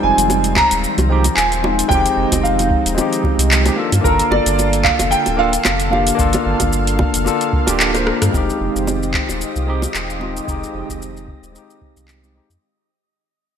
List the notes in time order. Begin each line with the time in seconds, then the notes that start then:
Already playing: D#3 F3 G3 G#3 C4 D#4 F4
0.03 F1 G#5
0.17 F1, closed hi-hat, shaker
0.30 high bongo, shaker
0.44 closed hi-hat, shaker
0.56 A#5, kick, clap, high bongo
0.71 D#1, closed hi-hat, shaker
0.84 shaker
0.98 C2, closed hi-hat, high bongo, shaker
1.09 G#3 C4 D#4 G4
1.24 closed hi-hat, high bongo, shaker
1.35 D#1 G#5, clap, shaker
1.52 closed hi-hat, shaker
1.63 G#3 C4 D#4 F4, high bongo
1.79 closed hi-hat, shaker
1.88 F1 G#3 C4 D#4 G5, kick, high bongo, shaker
1.93 D#4 G4
2.06 closed hi-hat, shaker
2.17 F1
2.32 F1, kick, closed hi-hat, high bongo, shaker
2.43 F5, shaker
2.59 closed hi-hat, high bongo, shaker
2.70 kick
2.85 D#1, closed hi-hat, shaker
2.94 G#3 C4, high bongo, shaker
2.99 D#4 G4
3.13 closed hi-hat, shaker
3.24 kick, high bongo
3.38 C2, closed hi-hat, shaker
3.51 clap, shaker
3.65 G#3 C4 D#4 G4, closed hi-hat, high bongo, shaker
3.75 D3 A#3 D4 F4 A4
3.92 G2, closed hi-hat, high bongo, shaker
4.01 G1 A#3 D4 A#4, kick
4.05 F4 A4, shaker
4.19 closed hi-hat, shaker
4.31 G1 D5, high bongo
4.46 G1, closed hi-hat, shaker
4.59 high bongo, shaker
4.73 closed hi-hat, shaker
4.84 F5, kick, clap
4.99 F1, closed hi-hat, high bongo, shaker
5.11 G5, shaker
5.26 D1, closed hi-hat, high bongo, shaker
5.37 A#3 D4 F4 A4 F5
5.53 closed hi-hat, shaker
5.65 F1, clap, high bongo, shaker
5.80 closed hi-hat, shaker
5.90 A#3 D4 F4 G4 F5, high bongo
6.07 closed hi-hat, shaker
6.15 G1 A#3 D4, kick
6.19 F4 A4, shaker
6.33 closed hi-hat, high bongo, shaker
6.46 G1
6.60 G1, kick, closed hi-hat, high bongo, shaker
6.73 shaker
6.87 closed hi-hat, shaker
6.99 kick, high bongo
7.14 F1, closed hi-hat, shaker
7.25 A#3 D4 F4 A4, high bongo, shaker
7.41 closed hi-hat, shaker
7.53 kick
7.66 D1 A#3 D4 F4 G4, closed hi-hat, high bongo, shaker
7.80 clap, shaker
7.93 A#3 D4 F4 C5, cross-stick, closed hi-hat, high bongo, shaker
8.07 cross-stick
8.22 G2, cross-stick, closed hi-hat, shaker
8.31 F1 D#3 G#3 C4 F4 G4 D#5 D#6, kick, high bongo, shaker
8.35 D#4 G4
8.50 shaker
8.61 F1
8.75 F1, shaker
8.87 high bongo, shaker
9.03 shaker
9.14 kick, clap
9.29 D#1, high bongo, shaker
9.41 shaker
9.56 C2, shaker
9.67 G#3 C4 D#4 G4
9.82 high bongo, shaker
9.94 D#1, clap, shaker
10.10 shaker
10.19 G#3 C4 D#4 F4, high bongo
10.37 shaker
10.45 F1 G#3 C4, kick, shaker
10.49 D#4 G4
10.63 shaker
10.74 F1
10.89 F1, kick, shaker
11.02 shaker
11.17 shaker
11.28 kick
11.42 D#1, shaker
11.52 G#3 C4, shaker
11.56 D#4 G4
11.70 shaker
11.82 kick
11.96 C2, shaker
12.08 clap, shaker
12.22 G#3 C4 D#4 G4, shaker
12.35 G#3 C4 D#4 G4
12.50 F2, shaker